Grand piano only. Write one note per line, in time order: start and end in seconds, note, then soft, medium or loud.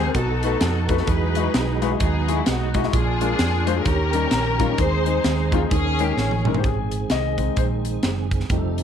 0.06 0.15 G#3 medium
0.06 0.15 C4 medium
0.06 0.15 G4 medium
0.06 0.16 A#4 medium
0.16 0.86 B2 medium
0.44 0.54 A3 medium
0.44 0.54 D#4 medium
0.44 0.55 F#4 medium
0.44 0.55 B4 medium
0.89 0.95 A3 medium
0.89 0.95 D#4 medium
0.89 0.95 F#4 medium
0.89 0.95 B4 medium
0.99 1.08 A3 medium
0.99 1.08 D#4 medium
0.99 1.08 F#4 medium
0.99 1.08 A4 medium
1.09 1.78 E3 medium
1.36 1.47 G#3 medium
1.36 1.47 E4 medium
1.36 1.47 F#4 medium
1.36 1.48 D#5 medium
1.82 1.88 G#3 medium
1.82 1.88 E4 medium
1.82 1.88 F#4 medium
1.82 1.88 B4 loud
1.91 2.03 G#3 medium
1.91 2.04 E4 medium
1.91 2.04 F#4 medium
1.91 2.04 D#5 medium
2.28 2.39 G#3 medium
2.28 2.40 E4 medium
2.28 2.40 F#4 medium
2.28 2.40 G#4 medium
2.74 2.80 G#3 medium
2.74 2.80 E4 medium
2.74 2.80 F#4 medium
2.74 2.81 D#5 medium
2.84 2.93 G#3 medium
2.84 2.93 E4 medium
2.84 2.93 F#4 medium
2.84 2.94 D#5 medium
2.92 3.63 A#2 medium
3.21 3.32 G#3 medium
3.21 3.32 D4 medium
3.21 3.32 F4 medium
3.21 3.33 A#4 medium
3.66 3.72 G#3 medium
3.66 3.73 D4 medium
3.66 3.73 F4 medium
3.66 3.73 C5 loud
3.76 3.85 G#3 medium
3.76 3.86 F4 medium
3.76 3.86 G#4 medium
3.86 4.56 D#3 medium
4.14 4.25 G3 medium
4.14 4.25 C#4 medium
4.14 4.25 D#4 medium
4.14 4.26 A#4 medium
4.60 4.65 G3 medium
4.60 4.66 C#4 medium
4.60 4.66 D#4 medium
4.60 4.66 F4 medium
4.69 4.78 G3 medium
4.69 4.79 C#4 medium
4.69 4.78 D#4 medium
4.69 4.79 A#4 medium
4.79 5.49 D#3 medium
5.06 5.17 G#3 medium
5.06 5.17 C4 medium
5.06 5.18 D#4 medium
5.06 5.18 C5 medium
5.53 5.58 G#3 medium
5.53 5.58 C4 medium
5.53 5.58 D#4 medium
5.53 5.59 F4 loud
5.62 5.71 G#3 medium
5.62 5.71 C4 medium
5.62 5.72 D#4 medium
5.62 5.72 C5 medium
5.72 6.42 D#3 medium
6.00 6.11 G#3 medium
6.00 6.11 C#4 medium
6.00 6.11 D#4 medium
6.00 6.11 A#4 medium
6.47 6.52 G#3 medium
6.47 6.52 C#4 medium
6.47 6.52 D#4 medium
6.47 6.52 A#4 medium
6.56 6.64 G#3 medium
6.56 6.64 C#4 medium
6.56 6.65 D#4 medium
6.56 6.65 C5 medium
6.60 6.65 G4 medium
6.65 7.12 G#4 medium
7.12 7.59 D#5 loud
7.38 8.00 G#3 soft
7.38 8.00 C4 soft
7.38 8.00 D#4 medium
7.58 7.64 C5 medium
8.50 8.83 G3 soft
8.50 8.83 A3 soft
8.50 8.83 D#4 medium